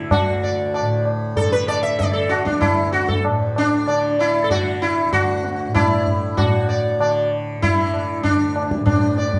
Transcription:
Already playing: D2 A2 D3 E4
0.11 F#4, tabla na, tabla ge
0.18 D2
0.43 D5
0.74 D5, tabla na
0.81 A2
1.05 tabla na
1.36 A4, tabla tin, tabla ge
1.41 D3
1.52 B4
1.68 D5, tabla na
1.83 E5
1.99 D3 D5, tabla tin, tabla ge
2.13 A4
2.29 F#4, tabla na
2.45 D4, tabla ke
2.61 D2 E4, tabla na, tabla ge
2.92 F#4, tabla te
3.08 A4, tabla ge
3.25 A2, tabla na
3.56 D4, tabla na
3.86 D3 D5, tabla na
4.19 E4 D5, tabla na
4.44 D3 A4
4.50 F#4 D5, tabla tin, tabla ge
4.82 E4
5.06 D2
5.13 F#4, tabla na, tabla ge
5.44 tabla te
5.67 A2
5.74 E4 D5, tabla na, tabla ge
6.07 tabla ge
6.37 A2 F#4, tabla na, tabla ge
6.69 D5
6.99 D3 D5, tabla na
7.58 D3
7.62 E4, tabla tin, tabla ge
7.94 tabla na
8.20 D2 D4, tabla tin, tabla ge
8.56 tabla na
8.71 tabla ke
8.80 A2
8.86 D4, tabla na, tabla ge
9.18 D5, tabla te
9.33 tabla ge

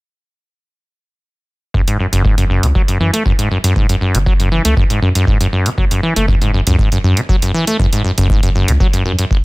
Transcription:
1.74 F#1 F#2, kick
1.88 G#2, closed hi-hat
1.99 F#2
2.13 F#1 F#2, closed hi-hat
2.25 G#2, kick
2.38 F#2, closed hi-hat
2.50 F#2
2.63 C#2 C#3, closed hi-hat
2.75 F#3, kick
2.88 F#2, closed hi-hat
3.00 F#2 E3
3.13 A3, closed hi-hat
3.26 F#2, kick
3.39 G#2, closed hi-hat
3.51 F#2
3.64 F#2, closed hi-hat
3.76 F#1 G#2, kick
3.89 F#2, closed hi-hat
4.01 F#2
4.14 F#1 C#3, closed hi-hat
4.26 F#3, kick
4.40 F#2, closed hi-hat
4.52 E3
4.65 C#2 A3, closed hi-hat
4.77 F#2, kick
4.90 G#2, closed hi-hat
5.02 F#2
5.15 F#2, closed hi-hat
5.27 kick
5.41 F#2, closed hi-hat
5.53 F#2
5.66 C#3, closed hi-hat
5.78 F#1 F#3, kick
5.91 F#2, closed hi-hat
6.03 E3
6.16 F#1 A3, closed hi-hat
6.28 F#2, kick
6.42 G#2, closed hi-hat
6.54 F#2
6.67 C#2 F#2, closed hi-hat
6.79 G#2, kick
6.92 F#2, closed hi-hat
7.04 F#2
7.17 C#3, closed hi-hat
7.29 F#3, kick
7.42 F#2, closed hi-hat
7.54 E3
7.67 A3, closed hi-hat
7.79 F#1 F#2, kick
7.93 G#2, closed hi-hat
8.04 F#2
8.18 F#1 F#2, closed hi-hat
8.30 kick
8.43 F#2, closed hi-hat
8.55 F#2
8.68 C#2 C#3, closed hi-hat
8.80 F#3, kick
8.93 F#2, closed hi-hat
9.05 F#2
9.19 F#2, closed hi-hat
9.31 F#1, kick

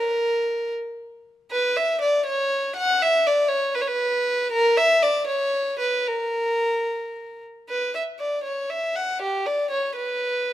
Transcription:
Already playing: A#4
1.52 B4
1.76 E5
2.02 D5
2.26 C#5
2.76 F#5
3.02 E5
3.27 D5
3.48 C#5
3.75 B4
3.81 C#5
3.88 B4
4.52 A#4
4.77 E5
5.03 D5
5.27 C#5
5.80 B4
6.07 A#4
7.69 B4
7.95 E5
8.19 D5
8.44 C#5
8.70 E5
8.96 F#5
9.22 G4
9.46 D5
9.71 C#5
9.96 B4

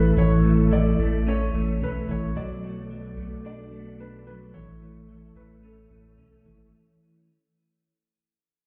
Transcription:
Already playing: A1 E3 A3 A4 B4 E5
0.17 A1 E3 C#5
0.44 A3
0.71 E3 D5
0.99 A1 A3
1.27 C#4 C#5
1.54 A1 A3
1.81 B1 C#4 B4
2.08 A1 E3 C#5
2.35 B1 F#3 B3 F#4 A4 D5
2.63 A3
2.90 F#3
3.17 B1 A3
3.45 D4 D5
3.72 A3
4.00 D4 B4
4.26 F#3 B4
4.53 A1 E3 A3 C#5 E5
4.81 A3
5.08 E3
5.35 A1 A3 B4
5.63 C#4 A4
5.90 A1 A3
6.18 B1 C#4
6.45 G#1 E3

